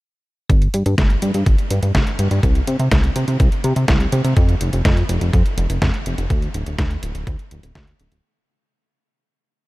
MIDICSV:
0, 0, Header, 1, 3, 480
1, 0, Start_track
1, 0, Tempo, 483871
1, 492, Time_signature, 4, 2, 24, 8
1, 9597, End_track
2, 0, Start_track
2, 0, Title_t, "Analog synth bass"
2, 0, Program_c, 0, 38
2, 492, Note_on_c, 0, 31, 99
2, 675, Note_off_c, 0, 31, 0
2, 733, Note_on_c, 0, 43, 87
2, 824, Note_off_c, 0, 43, 0
2, 852, Note_on_c, 0, 43, 95
2, 944, Note_off_c, 0, 43, 0
2, 972, Note_on_c, 0, 31, 85
2, 1155, Note_off_c, 0, 31, 0
2, 1212, Note_on_c, 0, 43, 99
2, 1304, Note_off_c, 0, 43, 0
2, 1333, Note_on_c, 0, 43, 88
2, 1424, Note_off_c, 0, 43, 0
2, 1452, Note_on_c, 0, 31, 84
2, 1544, Note_off_c, 0, 31, 0
2, 1693, Note_on_c, 0, 43, 98
2, 1784, Note_off_c, 0, 43, 0
2, 1812, Note_on_c, 0, 43, 78
2, 1904, Note_off_c, 0, 43, 0
2, 1933, Note_on_c, 0, 31, 99
2, 2024, Note_off_c, 0, 31, 0
2, 2172, Note_on_c, 0, 43, 98
2, 2264, Note_off_c, 0, 43, 0
2, 2292, Note_on_c, 0, 43, 104
2, 2384, Note_off_c, 0, 43, 0
2, 2413, Note_on_c, 0, 36, 96
2, 2596, Note_off_c, 0, 36, 0
2, 2652, Note_on_c, 0, 48, 90
2, 2744, Note_off_c, 0, 48, 0
2, 2772, Note_on_c, 0, 48, 103
2, 2864, Note_off_c, 0, 48, 0
2, 2893, Note_on_c, 0, 36, 85
2, 3075, Note_off_c, 0, 36, 0
2, 3133, Note_on_c, 0, 48, 96
2, 3224, Note_off_c, 0, 48, 0
2, 3253, Note_on_c, 0, 48, 90
2, 3344, Note_off_c, 0, 48, 0
2, 3372, Note_on_c, 0, 36, 89
2, 3464, Note_off_c, 0, 36, 0
2, 3612, Note_on_c, 0, 48, 103
2, 3704, Note_off_c, 0, 48, 0
2, 3733, Note_on_c, 0, 48, 88
2, 3824, Note_off_c, 0, 48, 0
2, 3852, Note_on_c, 0, 36, 90
2, 4035, Note_off_c, 0, 36, 0
2, 4093, Note_on_c, 0, 48, 94
2, 4184, Note_off_c, 0, 48, 0
2, 4212, Note_on_c, 0, 48, 91
2, 4303, Note_off_c, 0, 48, 0
2, 4332, Note_on_c, 0, 41, 96
2, 4515, Note_off_c, 0, 41, 0
2, 4573, Note_on_c, 0, 29, 88
2, 4664, Note_off_c, 0, 29, 0
2, 4693, Note_on_c, 0, 29, 98
2, 4784, Note_off_c, 0, 29, 0
2, 4812, Note_on_c, 0, 41, 90
2, 4995, Note_off_c, 0, 41, 0
2, 5052, Note_on_c, 0, 29, 100
2, 5143, Note_off_c, 0, 29, 0
2, 5172, Note_on_c, 0, 29, 91
2, 5263, Note_off_c, 0, 29, 0
2, 5292, Note_on_c, 0, 41, 83
2, 5383, Note_off_c, 0, 41, 0
2, 5532, Note_on_c, 0, 29, 97
2, 5623, Note_off_c, 0, 29, 0
2, 5651, Note_on_c, 0, 29, 78
2, 5743, Note_off_c, 0, 29, 0
2, 5772, Note_on_c, 0, 41, 95
2, 5864, Note_off_c, 0, 41, 0
2, 6012, Note_on_c, 0, 29, 100
2, 6103, Note_off_c, 0, 29, 0
2, 6131, Note_on_c, 0, 29, 107
2, 6223, Note_off_c, 0, 29, 0
2, 6252, Note_on_c, 0, 38, 96
2, 6435, Note_off_c, 0, 38, 0
2, 6491, Note_on_c, 0, 26, 87
2, 6583, Note_off_c, 0, 26, 0
2, 6611, Note_on_c, 0, 26, 102
2, 6703, Note_off_c, 0, 26, 0
2, 6732, Note_on_c, 0, 38, 90
2, 6915, Note_off_c, 0, 38, 0
2, 6972, Note_on_c, 0, 26, 99
2, 7064, Note_off_c, 0, 26, 0
2, 7092, Note_on_c, 0, 26, 87
2, 7184, Note_off_c, 0, 26, 0
2, 7212, Note_on_c, 0, 38, 90
2, 7304, Note_off_c, 0, 38, 0
2, 7453, Note_on_c, 0, 26, 102
2, 7544, Note_off_c, 0, 26, 0
2, 7572, Note_on_c, 0, 26, 85
2, 7663, Note_off_c, 0, 26, 0
2, 7692, Note_on_c, 0, 38, 90
2, 7875, Note_off_c, 0, 38, 0
2, 7932, Note_on_c, 0, 26, 87
2, 8023, Note_off_c, 0, 26, 0
2, 8052, Note_on_c, 0, 26, 89
2, 8144, Note_off_c, 0, 26, 0
2, 9597, End_track
3, 0, Start_track
3, 0, Title_t, "Drums"
3, 492, Note_on_c, 9, 36, 114
3, 493, Note_on_c, 9, 42, 52
3, 591, Note_off_c, 9, 36, 0
3, 592, Note_off_c, 9, 42, 0
3, 612, Note_on_c, 9, 42, 26
3, 712, Note_off_c, 9, 42, 0
3, 732, Note_on_c, 9, 42, 92
3, 831, Note_off_c, 9, 42, 0
3, 852, Note_on_c, 9, 42, 54
3, 951, Note_off_c, 9, 42, 0
3, 972, Note_on_c, 9, 36, 118
3, 973, Note_on_c, 9, 38, 112
3, 973, Note_on_c, 9, 42, 52
3, 1071, Note_off_c, 9, 36, 0
3, 1072, Note_off_c, 9, 38, 0
3, 1072, Note_off_c, 9, 42, 0
3, 1093, Note_on_c, 9, 42, 25
3, 1192, Note_off_c, 9, 42, 0
3, 1212, Note_on_c, 9, 42, 93
3, 1311, Note_off_c, 9, 42, 0
3, 1332, Note_on_c, 9, 42, 53
3, 1431, Note_off_c, 9, 42, 0
3, 1452, Note_on_c, 9, 36, 113
3, 1452, Note_on_c, 9, 42, 54
3, 1551, Note_off_c, 9, 36, 0
3, 1552, Note_off_c, 9, 42, 0
3, 1572, Note_on_c, 9, 42, 26
3, 1671, Note_off_c, 9, 42, 0
3, 1692, Note_on_c, 9, 42, 93
3, 1791, Note_off_c, 9, 42, 0
3, 1811, Note_on_c, 9, 42, 51
3, 1911, Note_off_c, 9, 42, 0
3, 1932, Note_on_c, 9, 36, 112
3, 1932, Note_on_c, 9, 38, 115
3, 1932, Note_on_c, 9, 42, 56
3, 2031, Note_off_c, 9, 38, 0
3, 2031, Note_off_c, 9, 42, 0
3, 2032, Note_off_c, 9, 36, 0
3, 2052, Note_on_c, 9, 42, 27
3, 2152, Note_off_c, 9, 42, 0
3, 2172, Note_on_c, 9, 42, 92
3, 2271, Note_off_c, 9, 42, 0
3, 2292, Note_on_c, 9, 42, 51
3, 2391, Note_off_c, 9, 42, 0
3, 2412, Note_on_c, 9, 36, 122
3, 2413, Note_on_c, 9, 42, 53
3, 2511, Note_off_c, 9, 36, 0
3, 2512, Note_off_c, 9, 42, 0
3, 2532, Note_on_c, 9, 42, 25
3, 2632, Note_off_c, 9, 42, 0
3, 2653, Note_on_c, 9, 42, 85
3, 2752, Note_off_c, 9, 42, 0
3, 2773, Note_on_c, 9, 42, 52
3, 2872, Note_off_c, 9, 42, 0
3, 2892, Note_on_c, 9, 36, 118
3, 2892, Note_on_c, 9, 38, 117
3, 2892, Note_on_c, 9, 42, 50
3, 2991, Note_off_c, 9, 38, 0
3, 2991, Note_off_c, 9, 42, 0
3, 2992, Note_off_c, 9, 36, 0
3, 3012, Note_on_c, 9, 42, 24
3, 3112, Note_off_c, 9, 42, 0
3, 3132, Note_on_c, 9, 42, 89
3, 3231, Note_off_c, 9, 42, 0
3, 3252, Note_on_c, 9, 42, 51
3, 3351, Note_off_c, 9, 42, 0
3, 3371, Note_on_c, 9, 42, 51
3, 3372, Note_on_c, 9, 36, 120
3, 3471, Note_off_c, 9, 36, 0
3, 3471, Note_off_c, 9, 42, 0
3, 3492, Note_on_c, 9, 42, 26
3, 3591, Note_off_c, 9, 42, 0
3, 3612, Note_on_c, 9, 42, 92
3, 3711, Note_off_c, 9, 42, 0
3, 3732, Note_on_c, 9, 42, 51
3, 3831, Note_off_c, 9, 42, 0
3, 3851, Note_on_c, 9, 38, 119
3, 3851, Note_on_c, 9, 42, 54
3, 3852, Note_on_c, 9, 36, 114
3, 3950, Note_off_c, 9, 38, 0
3, 3950, Note_off_c, 9, 42, 0
3, 3951, Note_off_c, 9, 36, 0
3, 3971, Note_on_c, 9, 42, 26
3, 4070, Note_off_c, 9, 42, 0
3, 4091, Note_on_c, 9, 42, 90
3, 4190, Note_off_c, 9, 42, 0
3, 4211, Note_on_c, 9, 42, 50
3, 4311, Note_off_c, 9, 42, 0
3, 4331, Note_on_c, 9, 42, 49
3, 4332, Note_on_c, 9, 36, 120
3, 4430, Note_off_c, 9, 42, 0
3, 4431, Note_off_c, 9, 36, 0
3, 4451, Note_on_c, 9, 42, 24
3, 4550, Note_off_c, 9, 42, 0
3, 4571, Note_on_c, 9, 42, 87
3, 4670, Note_off_c, 9, 42, 0
3, 4692, Note_on_c, 9, 42, 52
3, 4791, Note_off_c, 9, 42, 0
3, 4812, Note_on_c, 9, 36, 123
3, 4812, Note_on_c, 9, 38, 119
3, 4812, Note_on_c, 9, 42, 49
3, 4911, Note_off_c, 9, 36, 0
3, 4911, Note_off_c, 9, 38, 0
3, 4911, Note_off_c, 9, 42, 0
3, 4932, Note_on_c, 9, 42, 24
3, 5031, Note_off_c, 9, 42, 0
3, 5052, Note_on_c, 9, 42, 86
3, 5151, Note_off_c, 9, 42, 0
3, 5172, Note_on_c, 9, 42, 48
3, 5271, Note_off_c, 9, 42, 0
3, 5292, Note_on_c, 9, 36, 118
3, 5292, Note_on_c, 9, 42, 49
3, 5391, Note_off_c, 9, 36, 0
3, 5391, Note_off_c, 9, 42, 0
3, 5412, Note_on_c, 9, 42, 24
3, 5512, Note_off_c, 9, 42, 0
3, 5532, Note_on_c, 9, 42, 89
3, 5631, Note_off_c, 9, 42, 0
3, 5652, Note_on_c, 9, 42, 46
3, 5751, Note_off_c, 9, 42, 0
3, 5772, Note_on_c, 9, 36, 116
3, 5772, Note_on_c, 9, 38, 123
3, 5772, Note_on_c, 9, 42, 52
3, 5871, Note_off_c, 9, 36, 0
3, 5871, Note_off_c, 9, 38, 0
3, 5871, Note_off_c, 9, 42, 0
3, 5891, Note_on_c, 9, 42, 25
3, 5991, Note_off_c, 9, 42, 0
3, 6012, Note_on_c, 9, 42, 88
3, 6111, Note_off_c, 9, 42, 0
3, 6132, Note_on_c, 9, 42, 50
3, 6231, Note_off_c, 9, 42, 0
3, 6251, Note_on_c, 9, 36, 120
3, 6251, Note_on_c, 9, 42, 48
3, 6350, Note_off_c, 9, 42, 0
3, 6351, Note_off_c, 9, 36, 0
3, 6372, Note_on_c, 9, 42, 25
3, 6471, Note_off_c, 9, 42, 0
3, 6491, Note_on_c, 9, 42, 85
3, 6590, Note_off_c, 9, 42, 0
3, 6611, Note_on_c, 9, 42, 49
3, 6710, Note_off_c, 9, 42, 0
3, 6731, Note_on_c, 9, 38, 115
3, 6731, Note_on_c, 9, 42, 48
3, 6732, Note_on_c, 9, 36, 126
3, 6830, Note_off_c, 9, 38, 0
3, 6830, Note_off_c, 9, 42, 0
3, 6831, Note_off_c, 9, 36, 0
3, 6851, Note_on_c, 9, 42, 23
3, 6951, Note_off_c, 9, 42, 0
3, 6972, Note_on_c, 9, 42, 82
3, 7071, Note_off_c, 9, 42, 0
3, 7092, Note_on_c, 9, 42, 47
3, 7191, Note_off_c, 9, 42, 0
3, 7212, Note_on_c, 9, 36, 118
3, 7212, Note_on_c, 9, 42, 48
3, 7311, Note_off_c, 9, 36, 0
3, 7311, Note_off_c, 9, 42, 0
3, 7332, Note_on_c, 9, 42, 25
3, 7432, Note_off_c, 9, 42, 0
3, 7452, Note_on_c, 9, 42, 89
3, 7551, Note_off_c, 9, 42, 0
3, 7572, Note_on_c, 9, 42, 48
3, 7671, Note_off_c, 9, 42, 0
3, 7692, Note_on_c, 9, 36, 121
3, 7692, Note_on_c, 9, 38, 123
3, 7692, Note_on_c, 9, 42, 52
3, 7791, Note_off_c, 9, 36, 0
3, 7791, Note_off_c, 9, 38, 0
3, 7791, Note_off_c, 9, 42, 0
3, 7811, Note_on_c, 9, 42, 24
3, 7910, Note_off_c, 9, 42, 0
3, 7932, Note_on_c, 9, 42, 85
3, 8031, Note_off_c, 9, 42, 0
3, 8052, Note_on_c, 9, 42, 49
3, 8151, Note_off_c, 9, 42, 0
3, 9597, End_track
0, 0, End_of_file